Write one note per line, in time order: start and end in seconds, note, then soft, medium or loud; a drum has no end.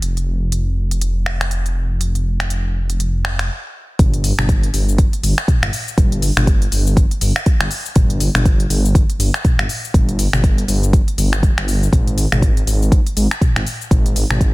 0.02 3.49 F1 medium
0.02 closed hi-hat medium
0.17 closed hi-hat soft
0.52 closed hi-hat medium
0.91 closed hi-hat soft
1.01 closed hi-hat medium
1.26 finger snap medium
1.41 finger snap medium
1.41 closed hi-hat soft
1.51 closed hi-hat medium
1.66 closed hi-hat soft
2.01 closed hi-hat medium
2.15 closed hi-hat soft
2.40 finger snap medium
2.40 closed hi-hat soft
2.50 closed hi-hat medium
2.90 closed hi-hat soft
3.00 closed hi-hat medium
3.25 finger snap medium
3.39 finger snap medium
3.39 closed hi-hat soft
3.99 4.32 G1 loud
3.99 kick loud
3.99 closed hi-hat medium
3.99 mid tom medium
3.99 cabasa soft
4.14 closed hi-hat soft
4.24 open hi-hat loud
4.24 cabasa medium
4.38 4.69 G1 medium
4.38 finger snap medium
4.38 mid tom medium
4.38 cabasa medium
4.49 kick loud
4.49 closed hi-hat medium
4.49 cabasa soft
4.63 closed hi-hat soft
4.73 5.07 G1 loud
4.73 open hi-hat medium
4.73 cabasa medium
4.89 cabasa medium
4.98 kick loud
4.98 closed hi-hat medium
4.98 cabasa soft
5.13 closed hi-hat soft
5.23 5.34 G1 medium
5.23 open hi-hat loud
5.23 cabasa medium
5.38 finger snap loud
5.38 cabasa medium
5.48 kick loud
5.48 closed hi-hat medium
5.48 mid tom medium
5.48 cabasa soft
5.62 5.70 G1 medium
5.62 finger snap loud
5.62 closed hi-hat soft
5.73 open hi-hat medium
5.73 cabasa medium
5.88 cabasa medium
5.98 6.31 G1 loud
5.98 kick loud
5.98 closed hi-hat medium
5.98 mid tom medium
5.98 cabasa soft
6.12 closed hi-hat soft
6.22 open hi-hat medium
6.22 cabasa loud
6.37 6.68 G1 medium
6.37 finger snap medium
6.37 mid tom medium
6.37 cabasa medium
6.47 kick loud
6.47 closed hi-hat medium
6.47 cabasa soft
6.62 closed hi-hat soft
6.72 7.05 G1 loud
6.72 open hi-hat medium
6.72 cabasa loud
6.87 cabasa medium
6.97 kick loud
6.97 closed hi-hat medium
6.97 cabasa soft
7.11 closed hi-hat soft
7.21 7.32 G1 medium
7.21 open hi-hat medium
7.21 cabasa loud
7.36 finger snap medium
7.36 cabasa medium
7.46 kick loud
7.46 closed hi-hat medium
7.46 cabasa soft
7.60 7.68 G1 medium
7.60 finger snap loud
7.60 closed hi-hat soft
7.71 open hi-hat medium
7.71 cabasa loud
7.86 cabasa medium
7.96 8.29 G1 loud
7.96 kick loud
7.96 closed hi-hat medium
7.96 mid tom medium
7.96 cabasa soft
8.10 closed hi-hat soft
8.20 open hi-hat medium
8.20 cabasa loud
8.35 8.66 G1 medium
8.35 finger snap medium
8.35 mid tom medium
8.35 cabasa medium
8.45 kick loud
8.45 closed hi-hat medium
8.45 cabasa soft
8.60 closed hi-hat soft
8.70 9.03 G1 loud
8.70 open hi-hat medium
8.70 cabasa loud
8.85 cabasa medium
8.95 kick loud
8.95 closed hi-hat medium
8.95 cabasa soft
9.10 closed hi-hat soft
9.19 9.30 G1 medium
9.19 open hi-hat medium
9.19 cabasa loud
9.34 finger snap medium
9.34 cabasa medium
9.45 kick loud
9.45 closed hi-hat medium
9.45 mid tom medium
9.45 cabasa soft
9.58 9.66 G1 medium
9.58 finger snap medium
9.58 closed hi-hat soft
9.69 open hi-hat medium
9.69 cabasa loud
9.84 cabasa medium
9.94 10.27 G1 loud
9.94 kick loud
9.94 closed hi-hat medium
9.94 mid tom medium
9.94 cabasa soft
10.09 closed hi-hat soft
10.19 open hi-hat medium
10.19 cabasa loud
10.33 10.64 G1 medium
10.33 finger snap medium
10.33 mid tom medium
10.33 cabasa medium
10.44 kick loud
10.44 closed hi-hat medium
10.44 cabasa soft
10.58 closed hi-hat soft
10.68 11.02 G1 loud
10.68 open hi-hat medium
10.68 cabasa loud
10.83 closed hi-hat soft
10.83 cabasa medium
10.93 kick loud
10.93 closed hi-hat medium
10.93 cabasa soft
11.08 closed hi-hat soft
11.18 11.51 G1 loud
11.18 open hi-hat medium
11.18 cabasa loud
11.33 finger snap medium
11.33 cabasa medium
11.43 kick loud
11.43 closed hi-hat medium
11.43 cabasa soft
11.57 11.88 G1 medium
11.57 finger snap medium
11.57 closed hi-hat soft
11.68 open hi-hat medium
11.68 cabasa loud
11.83 cabasa medium
11.92 12.26 G#1 loud
11.92 kick loud
11.92 closed hi-hat medium
11.92 mid tom medium
11.92 cabasa soft
12.07 closed hi-hat soft
12.18 open hi-hat medium
12.18 cabasa medium
12.32 12.63 G#1 medium
12.32 finger snap medium
12.32 mid tom loud
12.32 cabasa medium
12.42 kick loud
12.42 closed hi-hat medium
12.42 cabasa soft
12.57 closed hi-hat soft
12.67 13.00 G#1 loud
12.67 open hi-hat medium
12.67 cabasa medium
12.82 cabasa medium
12.92 kick loud
12.92 closed hi-hat medium
12.92 cabasa soft
13.07 closed hi-hat soft
13.16 13.27 G#1 medium
13.16 open hi-hat medium
13.16 cabasa medium
13.31 finger snap medium
13.31 cabasa medium
13.41 kick loud
13.41 closed hi-hat medium
13.41 mid tom loud
13.41 cabasa soft
13.56 13.63 G#1 medium
13.56 finger snap medium
13.56 closed hi-hat soft
13.67 open hi-hat medium
13.67 cabasa medium
13.81 cabasa medium
13.91 14.24 G#1 loud
13.91 kick loud
13.91 closed hi-hat medium
13.91 mid tom medium
13.91 cabasa soft
14.06 closed hi-hat soft
14.16 open hi-hat medium
14.16 cabasa medium
14.30 14.54 G#1 medium
14.30 finger snap medium
14.30 mid tom loud
14.30 cabasa soft
14.41 kick loud
14.41 closed hi-hat medium
14.41 cabasa soft